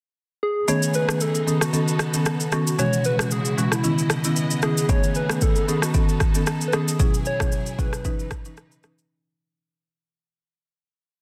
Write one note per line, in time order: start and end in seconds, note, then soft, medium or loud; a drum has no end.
0.43 0.71 G#4 medium
0.68 1.46 C#3 medium
0.68 1.05 D#3 medium
0.68 1.05 A3 medium
0.68 1.46 A3 medium
0.68 1.46 B3 medium
0.68 1.05 B3 medium
0.68 1.05 C#4 medium
0.68 2.77 D#4 medium
0.68 1.46 G#4 medium
0.68 1.06 G#4 loud
0.68 0.97 C#5 loud
0.68 shaker medium
0.83 shaker medium
0.94 1.23 B4 loud
0.94 shaker soft
1.09 1.22 D#3 medium
1.09 1.22 A3 medium
1.09 1.22 B3 medium
1.09 1.22 C#4 medium
1.09 1.22 G#4 medium
1.09 cross-stick loud
1.09 shaker medium
1.20 1.49 A4 loud
1.20 shaker medium
1.35 shaker soft
1.47 8.01 C#3 medium
1.47 1.63 D#3 medium
1.47 1.63 B3 medium
1.47 2.77 B3 medium
1.47 1.63 C#4 medium
1.47 1.64 G#4 medium
1.47 2.77 A4 medium
1.47 1.63 A4 medium
1.47 shaker medium
1.61 2.15 F#4 medium
1.61 cross-stick medium
1.61 shaker medium
1.73 1.89 D#3 medium
1.73 1.89 B3 medium
1.73 1.89 C#4 medium
1.73 1.89 A4 loud
1.73 shaker medium
1.88 shaker soft
1.99 cross-stick medium
1.99 shaker medium
2.14 2.27 D#3 medium
2.14 2.28 B3 medium
2.14 2.28 C#4 medium
2.14 2.28 A4 medium
2.14 shaker medium
2.26 cross-stick medium
2.26 shaker medium
2.40 shaker medium
2.52 2.68 D#3 medium
2.52 2.68 B3 medium
2.52 2.68 C#4 medium
2.52 2.81 F#4 loud
2.52 2.68 A4 medium
2.52 cross-stick medium
2.52 shaker soft
2.67 shaker loud
2.78 3.16 B2 medium
2.78 3.16 E3 medium
2.78 3.83 G#3 medium
2.78 3.16 G#3 medium
2.78 3.16 C#4 medium
2.78 4.87 E4 medium
2.78 3.83 F#4 medium
2.78 3.16 F#4 loud
2.78 3.07 C#5 loud
2.78 shaker medium
2.93 shaker medium
3.04 3.34 B4 loud
3.04 shaker soft
3.19 3.33 B2 medium
3.19 3.33 E3 medium
3.19 3.33 G#3 medium
3.19 3.33 C#4 medium
3.19 3.33 F#4 medium
3.19 cross-stick loud
3.19 shaker medium
3.31 3.60 G#4 loud
3.31 shaker medium
3.45 shaker soft
3.57 3.73 B2 medium
3.57 3.73 E3 medium
3.57 3.73 G#3 medium
3.57 3.74 C#4 medium
3.57 3.74 F#4 medium
3.57 shaker medium
3.72 4.25 E4 medium
3.72 cross-stick medium
3.72 shaker medium
3.84 4.00 D#3 medium
3.84 4.00 B3 medium
3.84 6.97 B3 medium
3.84 4.00 C#4 medium
3.84 4.00 E4 loud
3.84 4.88 D#5 medium
3.84 shaker medium
3.98 shaker soft
4.10 cross-stick medium
4.10 shaker medium
4.24 4.38 D#3 medium
4.24 4.38 B3 medium
4.24 4.38 C#4 medium
4.24 4.38 E4 medium
4.24 shaker medium
4.36 shaker medium
4.51 shaker medium
4.62 4.78 D#3 medium
4.62 4.79 B3 medium
4.62 4.79 C#4 medium
4.62 4.79 E4 medium
4.62 4.88 G#4 loud
4.62 cross-stick medium
4.62 shaker soft
4.78 shaker medium
4.89 5.26 D#3 medium
4.89 5.26 A3 medium
4.89 5.67 A3 medium
4.89 5.27 B3 medium
4.89 5.27 C#4 medium
4.89 6.98 D#4 medium
4.89 5.67 G#4 medium
4.89 5.27 G#4 loud
4.89 5.18 C#5 loud
4.89 kick loud
4.89 shaker medium
5.04 shaker medium
5.15 5.44 B4 loud
5.15 shaker soft
5.29 5.43 D#3 medium
5.29 5.43 A3 medium
5.29 5.43 B3 medium
5.29 5.43 C#4 medium
5.29 5.44 G#4 medium
5.29 cross-stick loud
5.29 shaker medium
5.41 5.68 A4 loud
5.41 kick medium
5.41 shaker medium
5.56 shaker soft
5.68 5.84 D#3 medium
5.68 5.84 B3 medium
5.68 5.84 C#4 medium
5.68 5.85 G#4 medium
5.68 6.98 A4 medium
5.68 5.84 A4 medium
5.68 shaker medium
5.82 6.35 F#4 medium
5.82 cross-stick medium
5.82 shaker medium
5.94 6.10 D#3 medium
5.94 6.10 B3 medium
5.94 6.10 C#4 medium
5.94 6.10 A4 loud
5.94 kick loud
5.94 shaker medium
6.09 shaker soft
6.20 kick medium
6.20 cross-stick medium
6.20 shaker medium
6.35 6.49 D#3 medium
6.35 6.49 B3 medium
6.35 6.49 C#4 medium
6.35 6.49 A4 medium
6.35 shaker medium
6.47 cross-stick medium
6.47 shaker medium
6.61 shaker medium
6.68 6.76 B4 medium
6.73 6.89 D#3 medium
6.73 6.89 B3 medium
6.73 6.89 C#4 medium
6.73 7.26 G#4 medium
6.73 6.89 A4 medium
6.73 cross-stick medium
6.73 shaker soft
6.88 shaker loud
6.99 7.37 B2 medium
6.99 7.37 F#3 medium
6.99 8.04 F#3 medium
6.99 7.37 C#4 medium
6.99 8.04 E4 medium
6.99 7.37 E4 medium
6.99 8.04 G#4 medium
6.99 7.37 G#4 loud
6.99 kick loud
6.99 shaker medium
7.14 shaker medium
7.25 7.81 C#5 loud
7.25 shaker soft
7.40 7.54 B2 medium
7.40 7.54 F#3 medium
7.40 7.54 C#4 medium
7.40 7.54 E4 medium
7.40 7.54 G#4 medium
7.40 kick medium
7.40 cross-stick loud
7.40 shaker medium
7.52 shaker medium
7.66 shaker soft
7.79 7.94 B2 medium
7.79 7.94 F#3 medium
7.79 7.94 C#4 medium
7.79 7.95 E4 medium
7.79 7.95 G#4 medium
7.79 8.58 B4 loud
7.79 kick medium
7.79 shaker medium
7.93 cross-stick medium
7.93 shaker loud
8.05 9.09 C#3 medium
8.05 8.21 E3 medium
8.05 9.09 E3 medium
8.05 8.21 C#4 medium
8.05 9.09 D#4 medium
8.05 8.21 D#4 medium
8.05 9.09 B4 medium
8.05 8.21 B4 loud
8.05 kick medium
8.05 shaker medium
8.19 shaker soft
8.31 kick medium
8.31 cross-stick loud
8.31 shaker medium
8.45 8.59 E3 medium
8.45 8.59 C#4 medium
8.45 8.59 D#4 medium
8.45 8.59 B4 medium
8.45 shaker loud
8.57 cross-stick medium
8.57 shaker medium
8.72 shaker medium
8.83 9.00 E3 medium
8.83 9.00 C#4 medium
8.83 9.00 D#4 medium
8.83 9.00 B4 medium
8.83 cross-stick medium
8.83 shaker soft
8.99 shaker loud